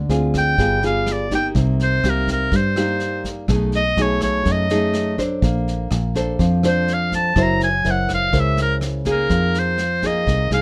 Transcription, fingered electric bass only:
0.09 0.55 D2 medium
0.58 1.51 G1 loud
1.55 2.00 C2 loud
2.04 2.49 C2 medium
2.52 3.45 G2 medium
3.49 3.94 B1 loud
3.97 4.42 B1 medium
4.46 5.39 F#2 loud
5.42 5.87 A#1 loud
5.91 6.36 A#1 medium
6.39 7.32 F2 loud
7.36 7.81 F#1 loud
7.85 8.30 F#1 loud
8.33 9.26 C#2 loud
9.30 10.23 F2 medium
10.27 10.49 C2 medium
10.51 10.62 C2 medium

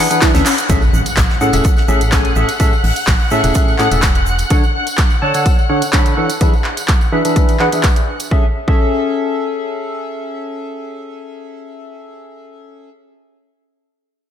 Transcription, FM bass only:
0.34 0.42 D2 medium
0.70 0.86 A1 loud
0.93 1.02 A1 loud
1.17 1.25 A1 loud
1.54 1.61 E1 loud
1.89 2.30 A1 loud
2.36 2.44 A1 medium
2.84 2.92 A1 loud
3.08 3.16 A1 loud
3.44 3.51 E1 medium
3.92 4.44 E1 medium

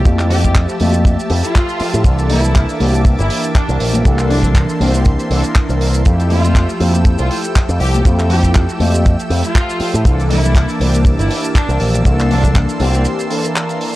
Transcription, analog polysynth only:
0.05 0.41 F3 medium
0.05 0.41 A3 medium
0.05 0.41 E4 medium
0.05 0.41 G4 loud
0.44 0.78 F3 medium
0.44 0.78 A3 medium
0.44 0.78 E4 medium
0.44 0.78 G4 loud
0.80 2.02 F3 medium
0.80 2.03 A3 medium
0.80 2.03 G4 medium
0.80 2.03 E5 medium
2.05 2.41 E3 medium
2.05 2.41 A#3 medium
2.05 2.41 D4 medium
2.05 2.41 A4 loud
2.44 2.77 E3 medium
2.44 2.78 A#3 medium
2.44 2.78 D4 medium
2.44 2.78 A4 loud
2.80 4.02 E3 medium
2.80 4.03 A#3 medium
2.80 4.03 D4 medium
2.80 4.03 G4 medium
4.05 4.41 E3 medium
4.05 4.41 A#3 medium
4.05 4.41 D4 medium
4.05 4.41 A4 loud
4.44 4.78 E3 medium
4.44 4.78 A#3 medium
4.44 4.78 D4 medium
4.44 4.78 A4 loud
4.80 5.28 E3 medium
4.80 5.28 A#3 medium
4.80 5.28 D4 medium
4.80 5.28 G4 medium
5.30 5.41 E3 loud
5.30 5.41 A#3 medium
5.30 5.41 D4 medium
5.30 5.41 A4 loud
5.43 6.02 E3 medium
5.43 6.03 A#3 medium
5.43 6.03 D4 medium
5.43 6.03 A#4 medium
6.05 6.41 F3 medium
6.05 6.41 A3 medium
6.05 6.41 E4 medium
6.05 6.41 G4 loud
6.44 6.78 F3 medium
6.44 6.78 A3 medium
6.44 6.78 G4 loud
6.44 6.78 E5 medium
6.79 8.02 F3 medium
6.79 8.03 A3 medium
6.79 8.03 E4 medium
6.79 8.03 G4 medium
8.05 8.40 F3 loud
8.05 8.41 A3 medium
8.05 8.41 E4 medium
8.05 8.41 G4 loud
8.44 8.78 F3 medium
8.44 8.78 A3 medium
8.44 8.78 E4 medium
8.44 8.78 G4 loud
8.80 10.02 F3 medium
8.80 10.03 A3 medium
8.80 10.03 G4 medium
8.80 10.03 E5 medium
10.05 10.41 E3 loud
10.05 10.41 A#3 medium
10.05 10.41 D4 medium
10.05 10.41 A4 loud
10.43 10.77 E3 medium
10.43 10.78 A#3 medium
10.43 10.78 D4 medium
10.43 10.78 A4 loud
10.80 12.02 E3 medium
10.80 12.03 A#3 medium
10.80 12.03 D4 medium
10.80 12.03 G4 medium
12.05 12.40 E3 loud
12.05 12.41 A#3 medium
12.05 12.41 D4 medium
12.05 12.41 A4 loud
12.44 12.77 E3 medium
12.44 12.78 A#3 medium
12.44 12.78 D4 medium
12.44 12.78 A4 loud
12.80 13.28 E3 medium
12.80 13.28 A#3 medium
12.80 13.28 D4 medium
12.80 13.28 G4 medium
13.30 13.41 E3 loud
13.30 13.41 A#3 medium
13.30 13.41 D4 medium
13.30 13.41 A4 loud
13.43 13.96 E3 medium
13.43 13.96 A#3 medium
13.43 13.96 D4 medium
13.43 13.96 A#4 medium

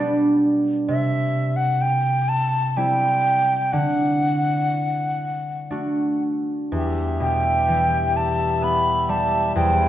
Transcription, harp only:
0.00 0.93 B2 medium
0.00 0.93 G3 soft
0.00 0.94 B3 soft
0.00 2.78 D4 medium
0.88 3.78 C3 medium
2.77 3.78 G3 soft
2.77 5.77 C4 soft
2.77 5.39 E4 soft
3.73 6.78 D3 medium
5.70 9.03 A3 soft
5.70 8.50 D4 soft
5.70 8.15 F#4 soft
6.72 9.54 E2 medium
7.20 9.60 B2 soft
7.68 9.60 E3 soft
8.62 9.88 B3 medium
9.09 9.60 G3 soft
9.55 9.88 E2 medium

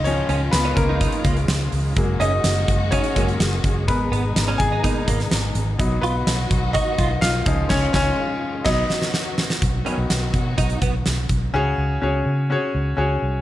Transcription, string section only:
0.00 1.93 D#3 medium
0.00 5.75 G#3 medium
0.00 1.94 C#4 medium
0.00 1.94 F4 medium
1.96 3.86 C#3 medium
1.96 3.86 A#3 medium
1.96 3.86 F#4 medium
3.87 5.77 B2 medium
3.87 5.77 B3 medium
3.87 5.77 D#4 medium
5.78 9.58 D#3 medium
5.78 7.45 F#3 medium
5.78 7.45 B3 medium
5.78 7.45 F#4 medium
7.46 8.65 G#3 medium
7.46 8.65 C#4 medium
7.46 8.65 F4 medium
8.66 9.61 F#3 medium
8.66 9.61 B3 medium
8.66 9.61 F#4 medium
9.62 11.52 D#3 medium
9.62 11.52 F#3 medium
9.62 11.52 B3 medium
9.62 11.52 F#4 medium

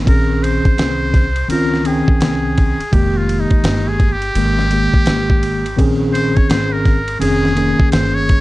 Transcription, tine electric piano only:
0.04 1.25 D#3 medium
0.04 1.26 C4 medium
0.04 1.27 C#4 medium
0.08 1.28 G#4 medium
1.48 1.80 D#3 medium
1.48 1.81 C4 medium
1.48 1.81 C#4 medium
1.48 1.82 F4 medium
1.84 2.77 D#3 medium
1.84 2.78 C4 medium
1.84 2.78 C#4 medium
1.88 2.79 G5 medium
2.92 4.12 D#3 medium
2.92 4.13 G#3 medium
2.92 4.14 A#3 medium
2.92 4.14 G4 medium
4.35 4.66 D#3 medium
4.35 4.67 G#3 medium
4.35 4.68 A#3 medium
4.35 4.68 G4 medium
4.70 5.63 D#3 medium
4.70 5.63 G#3 medium
4.70 5.64 A#3 medium
4.74 5.65 G4 medium
5.76 6.97 D#3 medium
5.76 6.98 C4 medium
5.76 6.99 C#4 medium
5.76 6.99 G#4 loud
7.19 7.51 D#3 medium
7.19 7.52 C4 medium
7.19 7.52 C#4 medium
7.19 7.53 G#4 medium
7.55 8.41 D#3 medium
7.55 8.41 A#3 medium
7.55 8.41 C#4 medium
7.55 8.41 G#4 medium

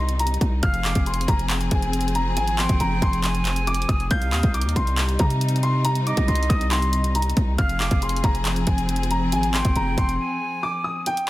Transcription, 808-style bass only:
0.00 0.38 C2 loud
0.41 0.62 C2 loud
0.63 0.94 F1 loud
0.96 1.27 F1 loud
1.28 1.70 F1 loud
1.72 2.38 F1 loud
2.37 2.68 G#1 loud
2.69 2.80 F1 loud
2.80 3.01 F1 loud
3.02 3.86 F1 loud
3.89 4.10 F1 loud
4.11 4.34 C2 loud
4.32 4.43 D#2 loud
4.43 4.67 C2 loud
4.65 4.75 D#2 loud
4.76 5.18 C2 loud
5.19 6.13 C3 loud
6.17 6.28 C2 loud
6.28 6.49 C2 loud
6.50 7.33 C2 loud
7.37 7.58 C2 loud
7.59 7.90 F1 loud
7.91 8.23 F1 loud
8.24 8.66 F1 loud
8.67 9.34 F1 loud
9.32 9.63 G#1 loud
9.65 9.76 F1 loud
9.76 9.97 F1 loud
9.98 10.19 F1 loud

